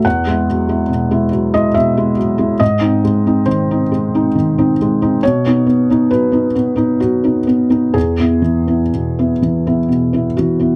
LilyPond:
<<
  \new Staff \with { instrumentName = "Felt piano" } { \time 3/4 \key e \major \tempo 4 = 69 fis''4.~ fis''16 dis''16 e''4 | dis''4 bis'4 r4 | cis''4 b'4 fis'4 | gis'2~ gis'8 fis'8 | }
  \new Staff \with { instrumentName = "Felt piano" } { \time 3/4 \key e \major e,16 <gis e'>16 fis16 <gis e'>16 b,16 <gis e'>16 fis16 <gis e'>16 b,16 <gis e'>16 fis16 <gis e'>16 | gis,16 <bis dis'>16 gis16 <bis dis'>16 dis16 <bis dis'>16 gis16 <bis dis'>16 dis16 <bis dis'>16 gis16 <bis dis'>16 | b,16 <b dis'>16 b16 <b dis'>16 fis16 <b dis'>16 b16 <b dis'>16 fis16 <b dis'>16 b16 <b dis'>16 | e,16 <b e'>16 e16 <b e'>16 b,16 <b e'>16 e16 <b e'>16 b,16 <b e'>16 e16 <b e'>16 | }
>>